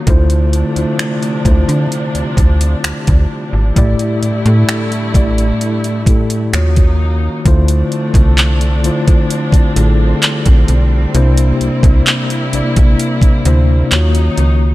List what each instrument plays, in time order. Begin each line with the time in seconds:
0.07 fm bass D2, string section C3 F3 A3 D4, tine electric piano D3 A3 E4 F4 C5, kick, closed hi-hat
0.30 closed hi-hat
0.53 closed hi-hat
0.76 fm bass D2, tine electric piano D3 A3 E4 F4 C5, closed hi-hat
0.99 finger snap, closed hi-hat
1.23 closed hi-hat
1.45 fm bass D2, tine electric piano D3 A3 E4 F4 C5, kick, closed hi-hat
1.68 fm bass D3, closed hi-hat
1.92 string section G3, closed hi-hat
2.15 fm bass D2, closed hi-hat
2.37 fm bass D2, kick, closed hi-hat
2.61 closed hi-hat
2.84 fm bass D2, finger snap, closed hi-hat
3.07 fm bass D2, kick, closed hi-hat
3.53 fm bass G#1
3.76 fm bass A1, tine electric piano A2 A3 E4 G4 D5, string section D3 A3 E4, kick, closed hi-hat
3.99 closed hi-hat
4.23 fm bass A2, closed hi-hat
4.45 tine electric piano A2 A3 E4 G4 A4, fm bass A2, closed hi-hat
4.69 finger snap, closed hi-hat
4.92 closed hi-hat
5.14 fm bass A1, tine electric piano A2 A3 E4 G4 D5, kick, closed hi-hat
5.38 closed hi-hat
5.61 closed hi-hat
5.84 closed hi-hat
6.06 tine electric piano A2 A3 E4 G4 A4, kick, closed hi-hat
6.30 closed hi-hat
6.53 fm bass D#2, string section C#3 F#3 A#3 D#4, tine electric piano D#3 A#3 F4 F#4 C#5, finger snap, closed hi-hat
6.76 kick, closed hi-hat
7.45 fm bass D2, tine electric piano D3 A3 E4 F4 C5, string section F3 A3 C4 D4, kick, closed hi-hat
7.68 closed hi-hat
7.92 closed hi-hat
8.14 fm bass C2, kick, closed hi-hat
8.38 clap, closed hi-hat
8.61 closed hi-hat
8.83 tine electric piano D3 A3 E4 F4 C5, closed hi-hat
9.08 kick, closed hi-hat
9.30 string section G3, closed hi-hat
9.52 fm bass A1, kick, closed hi-hat
9.76 fm bass A1, tine electric piano D3 A3 E4 F4 G#4, closed hi-hat
9.85 tine electric piano A4
10.23 clap, closed hi-hat
10.46 fm bass A#1, kick, closed hi-hat
10.68 fm bass B1, closed hi-hat
11.14 fm bass C2, tine electric piano C3 A#3 D4 E4 C5, string section A#3 E4, closed hi-hat
11.37 closed hi-hat
11.61 fm bass C2, closed hi-hat
11.83 fm bass C2, kick, closed hi-hat
12.07 clap, closed hi-hat
12.30 closed hi-hat
12.52 fm bass A#1, tine electric piano C3 A#3 D4 E4 D5, closed hi-hat
12.76 fm bass A#1, kick, closed hi-hat
12.99 closed hi-hat
13.22 kick, closed hi-hat
13.45 fm bass D2, tine electric piano C3 A#3 D4 E4 C5, closed hi-hat
13.91 fm bass D#2, string section C#3 F#3 D#4, tine electric piano D#3 A#3 F4 F#4 C#5, clap, closed hi-hat
14.15 closed hi-hat
14.38 fm bass C#2, closed hi-hat